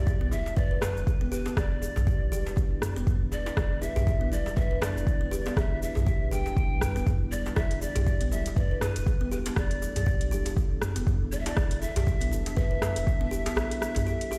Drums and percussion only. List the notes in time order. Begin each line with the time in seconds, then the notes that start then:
0.07 kick, djembe tone, shaker
0.31 djembe tone, shaker
0.46 djembe slap, shaker
0.56 kick, mid tom, djembe tone, shaker
0.81 cross-stick, mid tom, djembe slap, djembe tone, shaker
0.97 shaker
1.07 kick, djembe tone, shaker
1.32 djembe tone, shaker
1.46 djembe slap, shaker
1.57 kick, cross-stick, djembe tone, djembe bass, shaker
1.82 djembe tone, shaker
1.96 mid tom, djembe slap, djembe bass, shaker
2.07 kick, djembe tone, shaker
2.32 djembe tone, shaker
2.46 djembe slap, shaker
2.56 kick, djembe tone, shaker
2.82 cross-stick, mid tom, djembe tone, shaker
2.97 shaker
3.07 kick, mid tom, djembe tone, shaker
3.32 djembe tone, shaker
3.46 djembe slap, shaker
3.57 kick, cross-stick, djembe tone, djembe bass, shaker
3.81 djembe tone, shaker
3.96 mid tom, djembe slap, djembe bass, shaker
4.07 kick, djembe tone, shaker
4.33 djembe tone, shaker
4.46 djembe slap, shaker
4.56 kick, mid tom, djembe tone, shaker
4.81 cross-stick, mid tom, djembe slap, djembe tone, shaker
4.97 shaker
5.07 kick, djembe tone, shaker
5.32 djembe tone, shaker
5.46 djembe slap, shaker
5.56 kick, cross-stick, djembe tone, djembe bass, shaker
5.82 djembe tone, shaker
5.95 mid tom, djembe slap, djembe bass, shaker
6.07 kick, djembe tone, shaker
6.32 djembe tone, shaker
6.46 djembe slap, shaker
6.57 kick, djembe tone, shaker
6.81 cross-stick, mid tom, djembe tone, shaker
6.97 shaker
7.06 kick, mid tom, djembe tone, shaker
7.32 djembe tone, shaker
7.46 djembe slap, shaker
7.56 kick, cross-stick, djembe tone, djembe bass, shaker
7.71 closed hi-hat
7.82 djembe tone, shaker
7.95 closed hi-hat, mid tom, djembe slap, djembe bass, shaker
8.06 kick, djembe tone, shaker
8.21 closed hi-hat
8.32 djembe tone, shaker
8.46 closed hi-hat, djembe slap, shaker
8.56 kick, mid tom, djembe tone, shaker
8.81 cross-stick, mid tom, djembe slap, djembe tone, shaker
8.96 closed hi-hat, shaker
9.06 kick, djembe tone, shaker
9.32 djembe tone, shaker
9.46 closed hi-hat, djembe slap, shaker
9.56 kick, cross-stick, djembe tone, djembe bass, shaker
9.71 closed hi-hat
9.82 djembe tone, shaker
9.96 closed hi-hat, mid tom, djembe slap, djembe bass, shaker
10.07 kick, djembe tone, shaker
10.21 closed hi-hat
10.32 djembe tone, shaker
10.46 closed hi-hat, djembe slap, shaker
10.57 kick, djembe tone, shaker
10.82 cross-stick, mid tom, djembe tone, shaker
10.96 closed hi-hat, shaker
11.07 kick, mid tom, djembe tone, shaker
11.32 djembe tone, shaker
11.46 closed hi-hat, djembe slap, shaker
11.57 kick, cross-stick, djembe tone, djembe bass, shaker
11.71 closed hi-hat
11.82 djembe tone, shaker
11.96 closed hi-hat, mid tom, djembe slap, djembe bass, shaker
12.07 kick, djembe tone, shaker
12.21 closed hi-hat
12.31 djembe tone, shaker
12.46 closed hi-hat, djembe slap, shaker
12.57 kick, mid tom, djembe tone, shaker
12.82 cross-stick, mid tom, djembe slap, djembe tone, shaker
12.96 closed hi-hat, shaker
13.06 kick, djembe tone, shaker
13.31 djembe tone, shaker
13.46 closed hi-hat, djembe slap, shaker
13.56 cross-stick, djembe tone, djembe bass, shaker
13.71 closed hi-hat
13.82 cross-stick, djembe tone, shaker
13.95 closed hi-hat, mid tom, djembe slap, djembe bass, shaker
14.06 djembe tone, shaker
14.21 closed hi-hat
14.31 djembe tone, shaker